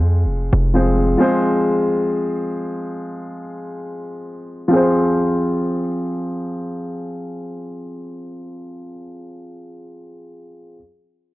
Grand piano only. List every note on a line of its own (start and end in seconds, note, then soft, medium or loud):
0.00 0.70 F3 medium
0.00 0.70 G#3 medium
0.00 0.71 C4 medium
0.00 0.71 G#4 medium
0.00 0.72 C5 medium
0.74 1.16 F3 soft
0.74 1.17 G#3 soft
0.74 1.18 C4 soft
0.74 1.19 G#4 soft
0.74 1.19 C5 medium
1.17 4.66 F3 medium
1.17 4.68 G#3 medium
1.17 4.68 C4 medium
1.17 4.69 G#4 medium
1.17 4.69 C5 medium
4.68 8.91 F3 medium
4.68 8.93 C4 medium
4.73 8.96 G#4 medium
4.73 8.98 C5 medium